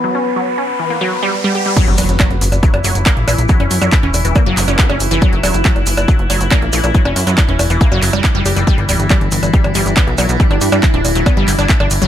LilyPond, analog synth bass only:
\new Staff \with { instrumentName = "Analog synth bass" } { \clef bass \time 4/4 \tempo 4 = 139 r1 | r16 fis,,16 e,,16 fis,,16 r16 fis,,16 fis,,16 fis,,16 r16 fis,,16 fis,,16 fis,,16 r16 ais,,16 ais,,16 ais,,16 | r16 fis,,16 fis,16 fis,16 r16 e,,16 e,,16 e,,16 r16 fis,,16 fis,,16 fis,,16 r16 fis,,16 fis,,16 fis,,16 | r16 fis,,16 e,,16 fis,,16 r16 fis,,16 fis,,16 fis,,16 r16 fis,,16 fis,,16 fis,,16 r16 ais,,16 ais,,16 ais,,16 |
r16 fis,,16 fis,16 fis,16 r16 e,,16 e,,16 e,,16 r16 fis,,16 fis,,16 fis,,16 r16 fis,,16 fis,,16 fis,,16 | r16 g,,16 d,,16 g,,16 r16 g,,16 g,,16 g,,16 r16 g,,16 g,,16 g,,16 r16 b,,16 b,,16 b,,16 | r16 g,,16 g,16 g,16 r16 d,,16 d,,16 d,,16 r16 g,,16 g,,16 g,,16 r16 g,,16 g,,16 g,,16 | }